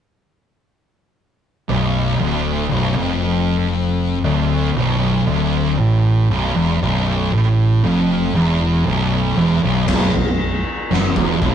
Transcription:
1.69 B0 B1
2.20 D1 D2
2.69 B0 B1
2.96 F1 F2
4.24 D1 D2
4.75 B0 B1
5.26 D1 D2
5.78 A1 A2
6.30 B0 B1
6.56 E1 E2
6.82 B0 B1
7.32 A1 A2
7.83 F1 F2
8.34 E1 E2
8.85 B0 B1
9.37 E1 E2
9.62 B0 B1
9.87 B0 B1, kick, floor tom, crash
10.14 B0 B1, floor tom
10.90 F#1 F#2, snare
11.15 E1 E2, kick, floor tom
11.41 B0 B1, kick, floor tom

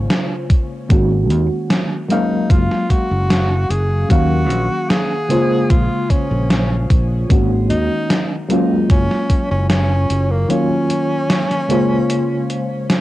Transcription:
Already playing: C#3 G#3 A#3 C#4 F4 C5
0.10 snare, closed hi-hat
0.50 kick, closed hi-hat
0.89 G#1 D#3 G#3 A#3 C#4 F#4, kick, closed hi-hat
1.30 D#2, closed hi-hat
1.70 snare, closed hi-hat
2.09 F#3 G#3 A#3 C#4 D#4 F5, closed hi-hat
2.50 F#1 F4, kick, closed hi-hat
2.71 snare
2.90 F#4, kick, closed hi-hat
3.11 F#1
3.30 snare, closed hi-hat
3.70 F#1 G#4, closed hi-hat
4.09 D#2 D#3 F#3 A#3 C#4 F#4 F5, kick, closed hi-hat
4.50 A#1, closed hi-hat
4.90 G#4, snare, closed hi-hat
5.28 C#3 G#3 A#3 F4 C5, closed hi-hat
5.70 A#1 F4, kick, closed hi-hat
6.10 C#4, kick, closed hi-hat
6.31 A#1
6.50 snare, closed hi-hat
6.90 A#1, kick, closed hi-hat
7.29 G#1 D#3 G#3 A#3 C#4 F#4, kick, closed hi-hat
7.70 D#2 D#4, closed hi-hat
8.10 snare, closed hi-hat
8.49 F#3 G#3 A#3 C#4 F4, closed hi-hat
8.90 F#1 C#4, kick, closed hi-hat
9.11 snare
9.30 kick, closed hi-hat
9.51 F#1 C#4
9.70 C#4, snare, closed hi-hat
10.10 F#1, closed hi-hat
10.31 A#3
10.48 D#3 F#3 A#3 C#4 F4, closed hi-hat
10.90 closed hi-hat
11.30 snare, closed hi-hat
11.51 snare, closed hi-hat
11.68 C#3 G#3 A#3 F4 C5, closed hi-hat
12.10 closed hi-hat
12.50 closed hi-hat
12.90 snare, closed hi-hat

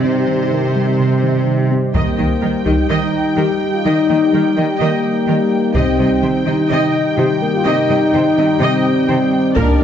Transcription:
Already playing: C3 G3 D#4 G4 C5
0.05 C3 C5
0.28 D#3
0.52 D#3 A#4
0.76 G3
0.99 C3
1.23 D#3
1.47 D#3
1.71 C4
1.95 D#3 G3 A#3 D#4 G4 D#5 G5, taiko
2.17 D#3 A#3 D#5
2.42 D#3 G3 A#4
2.65 D#3 G3 D#4 G4 D#5, taiko
2.90 D#3 D#4 D#5
3.37 D#3 G3 G4 A#4
3.74 F4
3.85 D#3 D#4 D#5
4.09 D#3 A#3 D#5
4.33 D#3 G3 A#4
4.57 D#3 G3 D#5
4.79 D#3 A#3 D#5
5.28 D#3 G3 A#4
5.74 C3 G3 C4 D#4 G4 D#5 G5, taiko
5.99 C3 G3 D#5
6.22 C3 D#3 C5
6.46 C3 D#3 D#4 D#5
6.70 C3 D#4 D#5
7.18 C3 D#3 G4 C5
7.42 A#3 A#4
7.55 F4
7.66 C3 D#4 D#5
7.89 C3 G3 D#5
8.13 C3 D#3 C5
8.37 C3 D#3 D#5
8.61 C3 C4 D#5
9.08 C3 D#3 C5
9.56 A#2 F3 A#3 D4 F4 A#4 D5, taiko
9.80 F4 A#4

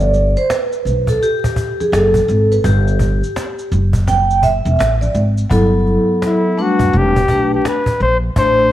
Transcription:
Already playing: G1 D5
0.00 high conga, maracas
0.14 cajon slap, low conga, maracas
0.37 C5, maracas
0.50 B4, cajon slap, maracas
0.72 maracas
0.85 B1, cajon slap, low conga, maracas
1.07 A4, cajon bass, maracas
1.21 G4, cajon slap, maracas
1.44 cajon bass, maracas
1.56 cajon bass, maracas
1.80 G#4, high conga, maracas
1.92 F#1 A4, cajon slap, maracas
2.14 cajon bass, high conga, maracas
2.28 G#1, cajon slap, low conga, maracas
2.52 B4, maracas
2.64 G1 G4, cajon bass, maracas
2.88 maracas
2.99 cajon bass, high conga, low conga, maracas
3.23 maracas
3.36 cajon slap, maracas
3.59 maracas
3.72 F#1, cajon slap, low conga, maracas
3.93 cajon bass, maracas
4.07 G5, cajon bass, cajon slap, high conga, maracas
4.30 maracas
4.43 E5, cajon bass, maracas
4.65 E1, high conga, maracas
4.79 A1, cajon slap, maracas
5.01 D5, high conga, maracas
5.15 G#1, cajon slap, low conga, maracas
5.38 maracas
5.50 G1 F#3 B3 E4 A4, cajon bass
5.86 cajon slap
6.22 cajon slap
6.26 E4
6.57 G3 A3 D4 F#4 B4, cajon slap
6.79 F#1, cajon bass
6.93 E1, cajon slap
6.98 G4
7.16 cajon bass
7.28 B1 A3 D4 G4 B4, cajon bass
7.55 G4
7.65 B4, cajon slap
7.86 cajon bass
8.00 A#1 C5, cajon slap
8.36 A1 A3 D4 G4 C5, cajon bass

